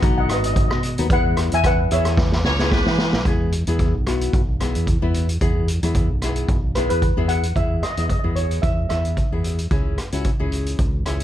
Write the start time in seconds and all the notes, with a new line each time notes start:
Already playing: D#5 F#5
0.02 B1 B3 D#4 F#4, kick, closed hi-hat
0.18 D#5 F#5
0.29 G#1 D#5, cross-stick, closed hi-hat
0.34 B4
0.38 D#5
0.44 D#5, closed hi-hat
0.54 D#5, kick, closed hi-hat
0.61 D#5
0.68 B2 D#5, cross-stick
0.83 closed hi-hat
0.98 D#2 B3 D#4 F#4, closed hi-hat
1.10 E2 B3 E4 G#4 B4 F#5, kick, closed hi-hat
1.37 cross-stick, closed hi-hat
1.52 E2 E5 G#5, closed hi-hat
1.64 B4 F#5, kick, cross-stick, closed hi-hat
1.91 E2 B3 E4 G#4 C#5 E5, closed hi-hat
2.05 cross-stick, closed hi-hat
2.17 kick, snare
2.32 snare
2.44 C#2 C#5, snare
2.59 B3 E4 G#4, snare
2.70 B4, kick, snare
2.86 E3, snare
2.98 snare
3.13 B1, snare
3.25 E2 B3 E4 G#4, kick, closed hi-hat
3.52 closed hi-hat
3.67 E2 B3 E4 G#4, closed hi-hat
3.79 kick, closed hi-hat
3.94 B1
4.07 B3 E4 F#4, cross-stick, closed hi-hat
4.21 closed hi-hat
4.33 B1, kick, closed hi-hat
4.60 B3 E4 G#4, cross-stick, closed hi-hat
4.75 E2, closed hi-hat
4.87 kick, closed hi-hat
5.02 E2 B3 E4 B4
5.14 closed hi-hat
5.29 closed hi-hat
5.41 E2 B3 E4 G#4, kick, closed hi-hat
5.68 closed hi-hat
5.83 E2 B3 E4 G#4, closed hi-hat
5.95 kick, closed hi-hat
6.10 B1
6.22 B3 E4 G#4, cross-stick, closed hi-hat
6.36 closed hi-hat
6.48 B1, kick, closed hi-hat
6.75 B3 E4 G#4 B4, cross-stick, closed hi-hat
6.90 E2 B4, closed hi-hat
7.02 kick, closed hi-hat
7.17 E2 B3 E4 G#4
7.28 F#5, closed hi-hat
7.43 closed hi-hat
7.56 E2 B3 E4 G#4 E5, kick, closed hi-hat
7.83 D#5, cross-stick, closed hi-hat
7.91 D#5
7.97 E2 B3 E4 G#4 D#5, closed hi-hat
8.04 D#5
8.09 D#5, kick, closed hi-hat
8.19 D#5
8.24 E2 B3 E4 G#4
8.36 C#5, closed hi-hat
8.51 closed hi-hat
8.62 E2 E5, kick, closed hi-hat
8.89 E2 B3 E4 B4 E5, cross-stick, closed hi-hat
9.05 closed hi-hat
9.17 kick, closed hi-hat
9.32 E2 B3 E4 G#4
9.44 closed hi-hat
9.58 closed hi-hat
9.71 C#2 C#4 E4 G#4, kick, closed hi-hat
9.98 cross-stick, closed hi-hat
10.12 C#2 C#4 E4 F#4, closed hi-hat
10.24 kick, closed hi-hat
10.40 C#2 C#4 E4 G#4
10.52 closed hi-hat
10.66 closed hi-hat
10.79 C#2, kick, closed hi-hat
11.06 C#2 C#4 E4 G#4 E5, cross-stick, closed hi-hat
11.20 closed hi-hat